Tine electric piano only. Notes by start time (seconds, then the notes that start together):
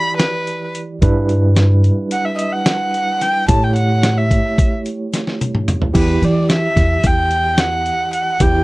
Already playing: E3 E4 G4 D5
1.02 G3 D4 E4 B4
3.48 A3 E4 G4 C#5
5.93 E3 E4 G4
8.40 E3 E4 G4